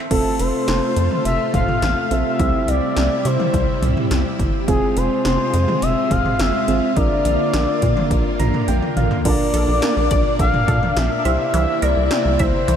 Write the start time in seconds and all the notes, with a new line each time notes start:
0.11 F1 C3 A3 C4 F4 A4, kick, closed hi-hat, crash
0.39 F1 C5, closed hi-hat
0.68 F1, snare, closed hi-hat
0.96 F2, closed hi-hat
1.11 mid tom
1.25 F1 E5, closed hi-hat
1.54 F1 F5, kick, closed hi-hat, mid tom
1.68 mid tom
1.82 A1, snare, closed hi-hat
2.11 A#1 C4 F4 A4 E5, closed hi-hat
2.39 C2 G3 C4 E4 G4, kick, closed hi-hat
2.68 C2 D5, closed hi-hat
2.97 C2, snare, closed hi-hat
3.25 C3 C5, closed hi-hat
3.40 mid tom
3.54 C2, kick, closed hi-hat
3.82 C2, closed hi-hat, mid tom
3.97 mid tom
4.11 C2, snare, closed hi-hat
4.39 G1, kick, closed hi-hat
4.68 F1 G#3 C4 F4 G#4, kick, closed hi-hat
4.97 F1 C5, closed hi-hat
5.25 F1, snare, closed hi-hat
5.54 F2, closed hi-hat
5.68 mid tom
5.82 F1 E5, closed hi-hat
6.11 F1 F5, kick, closed hi-hat, mid tom
6.25 mid tom
6.39 G1 E5, snare, closed hi-hat
6.68 G#1 C4 F4 G#4, closed hi-hat
6.97 A#1 D3 A#3 D4 F4 A#4 D5, kick, closed hi-hat
7.25 A#1, closed hi-hat
7.54 A#1, snare, closed hi-hat
7.82 A#2, kick, closed hi-hat
7.97 mid tom
8.11 A#1, kick, closed hi-hat
8.39 A#1 A#5, closed hi-hat, mid tom
8.54 mid tom
8.68 A#1 G5, closed hi-hat, high tom
8.82 mid tom
8.97 A1 F5, closed hi-hat, mid tom
9.11 floor tom
9.25 A#1 A#2 D3 A#3 D4 F4 A#4 D5, kick, closed hi-hat, crash
9.54 A#1 A4, closed hi-hat
9.68 A#1
9.82 A#3, snare, closed hi-hat
9.97 A#1
10.11 A#1 D5, kick, closed hi-hat
10.39 A#1 D3 F5, kick, closed hi-hat
10.54 mid tom
10.68 A#2 A4, kick, closed hi-hat, mid tom
10.83 mid tom
10.97 A#1 E5, snare, closed hi-hat
11.25 C2 C3 A#3 E4 G4 C5 E5, closed hi-hat
11.54 C2 E3 E5, closed hi-hat
11.82 C2 A#4 D5, closed hi-hat
11.97 C2
12.11 C4, snare, closed hi-hat
12.25 C2
12.39 C2 C5 E5, kick, closed hi-hat
12.68 C2 E3, closed hi-hat